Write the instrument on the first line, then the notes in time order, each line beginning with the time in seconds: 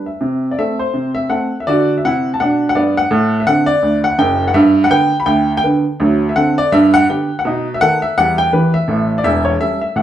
upright piano
0.06 E5
0.21 C3
0.51 D5
0.59 A3 C4 A4 E5
0.79 C5
0.94 C3
1.15 E5
1.29 A3 C4 A4 F#5
1.60 E5
1.67 D3 F#4 D5
1.98 E5
2.04 C3 E4 F#5
2.34 A5
2.40 B2 D4 F#5
2.69 F#5
2.75 G2 B3 D5
2.97 F#5
3.11 A2
3.40 E5
3.46 D3 C4 A4 F#5
3.66 D5
3.82 D2
4.04 F#5
4.18 F#1 F#2 G5
4.48 F#5
4.54 G2 B3 E5
4.84 F#5
4.90 D3 B3 B4 G5
5.20 B5
5.26 D2 G5
5.57 G5
5.63 D3 B3 B4
6.00 D2 F#3
6.29 E5
6.36 D3 C4 A4 F#5
6.58 D5
6.72 G2 B3 E5
6.94 F#5
7.09 D3 B3 G4 G5
7.39 F#5
7.45 B2 D#4
7.74 E5
7.81 D#3 B3 A4 F#5
8.02 E5
8.17 E2 G3 F#5
8.38 G5
8.53 E3 B3 G4 B4
8.74 E5
8.88 A1 A2
9.18 D5
9.24 E1 E2 E5
9.45 C#5
9.60 G3 C#4 A4 E5
9.81 E5
9.96 A1 A2 F#5